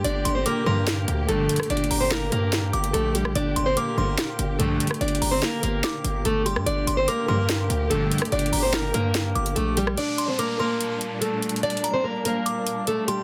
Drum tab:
HH |x-----x-----x-----------x-----x-----x-----x-x-x-|x-x-x-o-----------x-----x-----x--x--x-----x-----|x-----x-----x-----------x-----x-----x-----x-x-x-|x-x-x-o-----------x-----x-----x-----x-----x-----|
SD |------------------------o--------------------r--|------------o-----------o--------------------r--|------------------------o--------------------r--|------------o-----------o--------------------r--|

HH |x-----x-----x-----------x-----x-----x-----x-x-x-|x-x-x-o-----------x-----x-----x--x--x-----x-----|x-----x-----x-----------x-----x-----x-----x-x-x-|x-x-x-x-----------x-----x-----x-----x-----x-----|
SD |------------------------o--------------------r--|------------o-----------o--------------------r--|------------------------------------------------|------------------------------------------------|